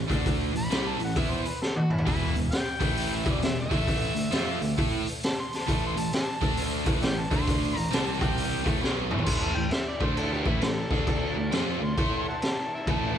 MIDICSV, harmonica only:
0, 0, Header, 1, 2, 480
1, 0, Start_track
1, 0, Tempo, 450113
1, 278, Time_signature, 4, 2, 24, 8
1, 14057, End_track
2, 0, Start_track
2, 0, Title_t, "Harmonica"
2, 0, Program_c, 0, 22
2, 617, Note_on_c, 0, 83, 115
2, 945, Note_on_c, 0, 81, 97
2, 961, Note_off_c, 0, 83, 0
2, 1090, Note_off_c, 0, 81, 0
2, 1110, Note_on_c, 0, 78, 85
2, 1247, Note_on_c, 0, 76, 81
2, 1263, Note_off_c, 0, 78, 0
2, 1388, Note_on_c, 0, 72, 84
2, 1404, Note_off_c, 0, 76, 0
2, 1560, Note_on_c, 0, 71, 84
2, 1575, Note_off_c, 0, 72, 0
2, 1714, Note_off_c, 0, 71, 0
2, 1720, Note_on_c, 0, 69, 87
2, 1871, Note_off_c, 0, 69, 0
2, 1877, Note_on_c, 0, 66, 89
2, 2040, Note_on_c, 0, 64, 91
2, 2056, Note_off_c, 0, 66, 0
2, 2199, Note_off_c, 0, 64, 0
2, 2216, Note_on_c, 0, 64, 112
2, 2510, Note_off_c, 0, 64, 0
2, 2680, Note_on_c, 0, 79, 121
2, 3358, Note_on_c, 0, 76, 99
2, 3374, Note_off_c, 0, 79, 0
2, 3501, Note_off_c, 0, 76, 0
2, 3522, Note_on_c, 0, 74, 83
2, 3659, Note_off_c, 0, 74, 0
2, 3666, Note_on_c, 0, 76, 97
2, 3815, Note_off_c, 0, 76, 0
2, 3839, Note_on_c, 0, 76, 109
2, 5226, Note_off_c, 0, 76, 0
2, 5602, Note_on_c, 0, 81, 108
2, 5745, Note_off_c, 0, 81, 0
2, 5753, Note_on_c, 0, 84, 93
2, 5928, Note_on_c, 0, 81, 84
2, 5944, Note_off_c, 0, 84, 0
2, 6068, Note_off_c, 0, 81, 0
2, 6104, Note_on_c, 0, 81, 94
2, 6236, Note_off_c, 0, 81, 0
2, 6253, Note_on_c, 0, 84, 96
2, 6386, Note_on_c, 0, 81, 104
2, 6402, Note_off_c, 0, 84, 0
2, 6537, Note_off_c, 0, 81, 0
2, 6547, Note_on_c, 0, 81, 113
2, 7007, Note_off_c, 0, 81, 0
2, 7498, Note_on_c, 0, 74, 74
2, 7498, Note_on_c, 0, 76, 74
2, 7498, Note_on_c, 0, 79, 106
2, 7571, Note_off_c, 0, 76, 0
2, 7579, Note_off_c, 0, 74, 0
2, 7675, Note_on_c, 0, 81, 90
2, 7691, Note_off_c, 0, 79, 0
2, 7821, Note_off_c, 0, 81, 0
2, 7841, Note_on_c, 0, 84, 119
2, 8289, Note_off_c, 0, 84, 0
2, 8289, Note_on_c, 0, 82, 119
2, 8448, Note_off_c, 0, 82, 0
2, 8460, Note_on_c, 0, 81, 112
2, 8596, Note_off_c, 0, 81, 0
2, 8603, Note_on_c, 0, 81, 102
2, 8753, Note_on_c, 0, 79, 114
2, 8769, Note_off_c, 0, 81, 0
2, 9227, Note_off_c, 0, 79, 0
2, 9858, Note_on_c, 0, 84, 101
2, 10047, Note_on_c, 0, 81, 85
2, 10063, Note_off_c, 0, 84, 0
2, 10168, Note_off_c, 0, 81, 0
2, 10175, Note_on_c, 0, 79, 101
2, 10346, Note_off_c, 0, 79, 0
2, 10353, Note_on_c, 0, 76, 107
2, 10515, Note_off_c, 0, 76, 0
2, 10536, Note_on_c, 0, 74, 97
2, 10695, Note_on_c, 0, 72, 95
2, 10711, Note_off_c, 0, 74, 0
2, 10859, Note_on_c, 0, 69, 95
2, 10875, Note_off_c, 0, 72, 0
2, 11018, Note_on_c, 0, 67, 90
2, 11034, Note_off_c, 0, 69, 0
2, 11167, Note_off_c, 0, 67, 0
2, 11177, Note_on_c, 0, 64, 83
2, 11344, Note_on_c, 0, 69, 99
2, 11360, Note_off_c, 0, 64, 0
2, 12262, Note_off_c, 0, 69, 0
2, 12640, Note_on_c, 0, 84, 96
2, 13084, Note_off_c, 0, 84, 0
2, 13100, Note_on_c, 0, 76, 62
2, 13100, Note_on_c, 0, 78, 62
2, 13100, Note_on_c, 0, 81, 88
2, 13177, Note_off_c, 0, 78, 0
2, 13190, Note_off_c, 0, 76, 0
2, 13553, Note_off_c, 0, 81, 0
2, 13591, Note_on_c, 0, 76, 83
2, 13729, Note_off_c, 0, 76, 0
2, 13763, Note_on_c, 0, 81, 111
2, 14057, Note_off_c, 0, 81, 0
2, 14057, End_track
0, 0, End_of_file